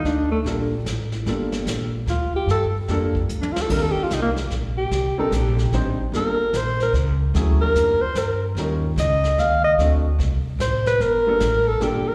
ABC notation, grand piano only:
X:1
M:3/4
L:1/8
Q:"Swing" 1/4=148
K:Gm
V:1 name="Grand piano"
z2 [G,B,DFA] z3 | [G,B,DFA]3 z3 | z2 [G,B,DFA] z3 | [G,CDEB]3 z3 |
z [G,CDEB] z2 [G,CDEc] z | [G,B,DFA] z4 z | [^F,A,^C=E_A] [G,B,D=FB]2 z3 | [G,_DEFB] z4 z |
[A,CD^FA] z4 z | z [G,B,DFA] z2 [G,B,DFA] z |]